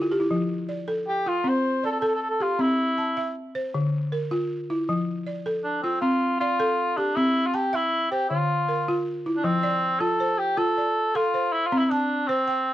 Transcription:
0.02 0.19 F4 medium
0.12 0.29 G4 medium
0.20 0.38 E4 medium
0.31 0.68 F3 medium
0.69 1.26 D5 medium
0.88 1.26 A4 medium
1.08 1.30 G4 medium
1.26 1.83 F4 medium
1.26 1.50 F4 medium
1.44 1.83 C4 medium
1.48 1.85 C5 medium
1.84 1.91 A4 medium
1.84 2.40 D5 medium
1.91 1.98 A4 medium
2.00 2.06 A4 medium
2.00 2.40 A4 medium
2.08 2.14 A4 medium
2.15 2.21 A4 medium
2.22 2.28 A4 medium
2.30 2.43 A4 medium
2.40 2.63 F4 medium
2.40 2.78 G4 medium
2.59 2.97 C4 medium
2.59 3.36 E4 medium
2.98 3.55 A5 medium
3.17 3.55 E5 medium
3.55 3.93 C5 medium
3.74 4.12 D3 medium
4.12 4.69 A#4 medium
4.31 4.69 F4 medium
4.70 5.08 E4 medium
4.89 5.27 F3 medium
5.27 5.84 D5 soft
5.46 5.84 A4 medium
5.64 5.82 D4 medium
5.82 6.00 C4 medium
5.82 6.41 F4 medium
6.01 6.40 C4 medium
6.01 6.37 F4 medium
6.40 6.99 F4 medium
6.40 6.98 D5 medium
6.60 6.98 A4 medium
6.97 7.17 D4 medium
6.97 7.36 G4 medium
7.16 7.55 C4 medium
7.16 7.48 E4 loud
7.46 7.56 F4 medium
7.54 7.77 G4 medium
7.54 8.11 A5 medium
7.73 8.11 E4 medium
7.73 8.11 E5 medium
8.11 8.29 G4 medium
8.11 8.50 C5 medium
8.30 8.69 D3 medium
8.30 9.02 F4 medium
8.68 9.26 A#4 medium
8.88 9.26 F4 medium
9.26 9.64 E4 medium
9.37 9.46 D4 medium
9.44 9.82 F3 medium
9.44 10.01 C4 medium
9.63 10.20 D5 medium
10.00 10.39 F4 medium
10.00 10.40 A4 medium
10.20 10.77 C5 medium
10.38 10.59 G4 medium
10.57 10.96 F4 medium
10.57 11.17 A4 medium
10.78 11.34 D5 medium
11.15 11.54 F4 medium
11.15 11.53 A4 medium
11.34 11.91 C5 medium
11.52 11.68 E4 medium
11.67 11.80 F4 medium
11.72 12.10 C4 medium
11.78 11.85 E4 medium
11.85 11.91 E4 medium
11.90 12.29 D4 medium
11.90 12.48 A5 medium
12.28 12.74 C4 medium
12.28 12.67 C5 medium
12.48 12.74 G5 medium

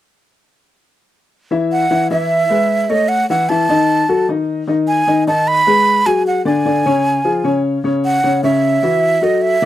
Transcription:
1.51 1.83 E3 medium
1.51 1.83 E4 medium
1.51 1.84 E5 medium
1.72 2.08 F#5 medium
1.91 2.07 E3 medium
1.91 2.07 E4 medium
1.91 2.07 E5 medium
2.10 2.43 E3 medium
2.10 2.43 E4 medium
2.10 2.91 E5 medium
2.10 2.43 E5 medium
2.50 2.82 G#3 medium
2.50 2.82 G#4 medium
2.50 2.83 B4 medium
2.89 3.22 A3 medium
2.89 3.22 A4 medium
2.89 3.22 C#5 medium
2.89 3.10 D#5 medium
3.08 3.28 F#5 medium
3.30 3.45 E3 medium
3.30 3.46 E4 medium
3.30 3.46 E5 medium
3.30 3.51 F#5 medium
3.49 3.65 E3 medium
3.49 3.65 E4 medium
3.49 3.66 E5 medium
3.49 4.28 A5 medium
3.69 4.01 D#3 medium
3.69 4.02 D#4 medium
3.69 4.02 D#5 medium
4.09 4.25 F#3 medium
4.09 4.25 F#4 medium
4.09 4.25 A4 medium
4.29 4.61 D#3 medium
4.29 4.61 D#4 medium
4.29 4.61 D#5 medium
4.67 5.00 D#3 medium
4.67 5.00 D#4 medium
4.67 5.00 D#5 medium
4.88 5.24 G#5 loud
5.07 5.23 D#3 medium
5.07 5.23 D#4 medium
5.07 5.24 D#5 medium
5.27 5.59 D#3 medium
5.27 5.59 D#4 medium
5.27 5.60 D#5 medium
5.27 5.49 A5 loud
5.48 6.08 B5 loud
5.67 5.99 G#3 medium
5.67 5.99 G#4 medium
5.67 5.99 B4 medium
6.06 6.38 F#3 medium
6.06 6.38 F#4 medium
6.06 6.38 G#4 medium
6.06 6.26 G#5 medium
6.27 6.44 F#5 medium
6.45 6.61 D3 medium
6.45 6.61 D4 medium
6.45 6.62 D5 medium
6.45 7.60 G#5 medium
6.65 6.81 D3 medium
6.65 6.81 D4 medium
6.65 6.81 D5 medium
6.86 7.18 C#3 medium
6.86 7.18 C#4 medium
6.86 7.18 C#5 medium
7.25 7.41 F3 medium
7.25 7.41 F4 medium
7.25 7.41 G#4 medium
7.44 7.76 C#3 medium
7.44 7.77 C#4 medium
7.44 7.77 C#5 medium
7.84 8.16 C#3 medium
7.84 8.16 C#4 medium
7.84 8.17 C#5 medium
8.05 8.41 F#5 medium
8.24 8.40 C#3 medium
8.24 8.40 C#4 medium
8.24 8.40 C#5 medium
8.43 8.76 C#3 medium
8.43 8.76 C#4 medium
8.43 8.76 C#5 medium
8.43 9.25 E5 medium
8.83 9.15 E3 medium
8.83 9.15 E4 medium
8.83 9.15 F#4 medium
9.21 9.54 F#3 medium
9.21 9.55 F#4 medium
9.21 9.55 A4 medium
9.21 9.43 D#5 medium
9.42 9.65 E5 medium
9.62 9.65 D3 medium

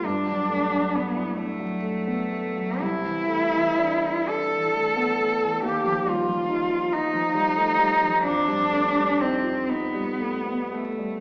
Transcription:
0.04 2.77 G2 soft
0.04 0.97 D4 soft
0.26 0.63 F#3 soft
0.49 0.85 A3 soft
0.71 1.07 F#3 soft
0.93 1.39 B3 soft
0.93 1.29 D4 soft
1.16 1.38 E4 soft
1.37 2.83 A3 soft
1.37 1.74 D4 soft
1.60 1.98 F#3 soft
1.82 2.22 A3 soft
2.07 2.32 B3 soft
2.32 2.71 A3 soft
2.56 2.80 F#3 soft
2.80 5.59 C2 soft
2.80 4.30 E4 medium
3.03 3.42 E3 soft
3.28 3.68 A3 soft
3.52 3.93 E3 soft
3.78 4.18 D4 soft
4.04 4.28 E4 soft
4.28 4.66 D4 soft
4.28 5.63 A4 medium
4.52 4.88 E3 soft
4.75 5.11 A3 soft
4.97 5.19 B3 soft
5.19 5.54 A3 soft
5.41 5.63 E3 soft
5.63 8.21 D#2 soft
5.63 6.09 G4 medium
5.84 6.19 F3 soft
6.05 6.40 G3 soft
6.05 6.94 F4 soft
6.27 6.61 F3 soft
6.49 6.83 D#4 soft
6.70 6.91 F4 soft
6.92 7.26 D#4 soft
6.92 8.24 D#4 medium
7.13 7.48 F3 soft
7.34 7.70 G3 soft
7.56 7.79 A3 soft
7.79 8.16 G3 soft
8.02 8.25 F3 soft
8.25 11.20 F2 soft
8.25 9.22 D4 medium
8.48 8.86 G3 soft
8.71 9.10 A3 soft
8.95 9.34 G3 soft
9.19 9.71 C4 soft
9.19 9.59 D#4 soft
9.44 9.69 F4 soft
9.69 10.76 B3 soft
9.69 10.10 D#4 soft
9.94 10.36 G3 soft
10.20 10.62 A3 soft
10.46 10.73 B3 soft
10.72 11.15 A3 soft
10.72 11.20 A3 soft
10.99 11.20 G3 soft

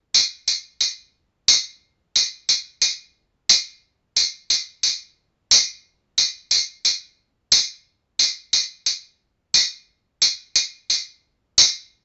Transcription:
0.14 tambourine medium
0.48 tambourine medium
0.81 tambourine soft
1.48 tambourine medium
2.16 tambourine medium
2.49 tambourine medium
2.82 tambourine soft
3.49 tambourine medium
4.16 tambourine medium
4.50 tambourine medium
4.83 tambourine soft
5.51 tambourine medium
6.18 tambourine medium
6.51 tambourine medium
6.85 tambourine soft
7.52 tambourine medium
8.19 tambourine medium
8.53 tambourine medium
8.86 tambourine soft
9.54 tambourine medium
10.22 tambourine medium
10.56 tambourine medium
10.90 tambourine soft
11.58 tambourine medium

